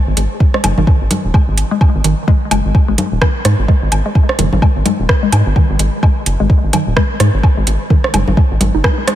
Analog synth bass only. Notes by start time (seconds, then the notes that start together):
0.07 G#1
0.17 G#1
0.64 F#1
0.78 G#1
1.01 G#1
1.25 D#1
1.48 G#1
1.95 G#1
2.04 G#1
2.51 F#1
2.65 G#1
2.89 G#1
3.12 D#1
3.45 G#2
3.59 G#1
3.82 G#1
3.92 G#1
4.39 F#1
4.53 G#1
4.76 G#1
4.99 D#1
5.32 G#2
5.46 G#1
5.70 G#1
5.79 G#1
6.26 F#1
6.40 G#1
6.64 G#1
6.87 D#1
7.20 G#2
7.34 G#1
7.57 G#1
7.67 G#1
8.14 F#1
8.28 G#1
8.51 G#1
8.61 G#1
8.74 F#1